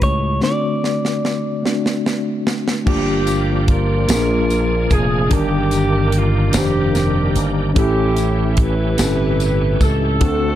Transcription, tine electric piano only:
0.00 0.19 A3 soft
0.00 0.44 C#4 medium
0.00 0.20 E4 soft
0.00 0.21 G4 medium
0.41 1.60 D3 soft
0.41 1.42 A3 medium
0.41 1.42 C4 medium
0.41 1.43 D4 medium
0.41 0.49 D#4 medium
0.50 1.46 F#4 medium
1.63 2.64 A3 medium
1.63 2.64 C4 medium
1.63 2.65 D4 medium
1.63 2.65 F#4 medium
2.85 4.05 G2 medium
2.85 2.92 A3 medium
2.85 3.86 D4 medium
2.85 3.87 F4 medium
2.85 3.87 G4 medium
2.91 3.89 A#3 medium
4.07 5.27 A#2 medium
4.07 5.08 A#3 medium
4.07 4.15 C4 soft
4.07 5.09 F4 medium
4.07 5.10 G#4 medium
4.15 5.12 D4 medium
5.30 6.50 G2 medium
5.30 6.31 D#3 medium
5.30 6.31 D4 medium
5.30 6.31 G4 medium
5.30 6.32 A#4 medium
6.52 7.54 D#3 medium
6.52 7.53 D4 medium
6.52 7.54 G4 medium
6.52 7.55 C5 medium
7.74 8.94 A2 medium
7.74 8.75 C#4 medium
7.74 8.76 E4 medium
7.74 8.77 G4 medium
7.74 8.77 A4 medium
8.98 9.05 C4 soft
8.98 9.99 E4 medium
8.98 9.99 G4 medium
8.98 10.00 A4 medium
9.05 10.02 C#4 medium
10.20 10.55 D3 medium
10.20 10.55 C4 medium
10.20 10.55 D4 medium
10.20 10.55 F#4 medium
10.20 10.55 A4 medium

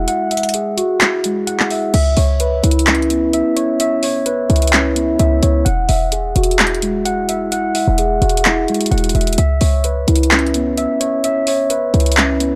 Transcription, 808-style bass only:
1.94 2.16 C#2 loud
2.17 2.62 C#2 loud
2.64 3.42 C#2 loud
4.50 5.17 C#2 loud
5.19 5.42 C#2 loud
5.43 5.65 C#2 loud
5.66 5.88 E1 loud
5.89 6.34 E1 loud
6.36 7.71 E1 loud
7.88 8.20 E1 loud
8.22 8.66 E1 loud
8.92 9.14 E1 loud
9.15 9.37 E1 loud
9.38 9.60 C#2 loud
9.61 10.06 C#2 loud
10.08 10.87 C#2 loud
11.94 12.55 C#2 loud

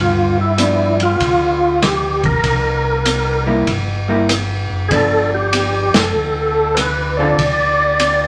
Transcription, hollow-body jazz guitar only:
0.58 0.96 F3 medium
0.58 0.96 B3 medium
0.58 0.96 D4 medium
3.46 3.65 G3 medium
3.46 3.65 A#3 medium
3.46 3.65 E4 medium
4.08 4.27 G3 medium
4.08 4.27 A#3 medium
4.08 4.28 E4 medium
4.90 5.86 F3 soft
4.90 5.86 B3 medium
4.90 5.86 D4 medium
7.19 7.37 D3 medium
7.19 7.37 C4 medium
7.19 7.37 F4 medium
7.19 7.38 A4 medium

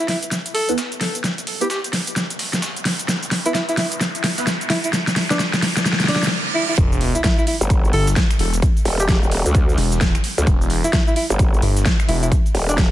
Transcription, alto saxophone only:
0.09 0.18 E4 medium
0.54 0.69 A4 medium
1.61 1.67 G4 medium
1.70 1.79 G4 medium
3.46 3.51 E4 medium
3.55 3.64 E4 medium
3.69 3.75 E4 medium
3.78 3.87 E4 medium
4.70 4.79 E4 medium
4.84 4.90 E4 medium
5.30 5.40 D4 medium
6.09 6.23 D4 medium
6.55 6.64 E4 medium
6.69 6.74 E4 medium
7.15 7.21 E4 medium
7.24 7.33 E4 medium
7.38 7.44 E4 medium
7.47 7.56 E4 medium
7.93 8.08 A4 loud
8.99 9.05 G4 medium
9.08 9.17 G4 medium
10.84 10.90 E4 medium
10.93 11.02 E4 medium
11.07 11.13 E4 medium
11.16 11.25 E4 medium
12.08 12.18 E4 medium
12.22 12.28 E4 medium
12.69 12.79 D4 medium

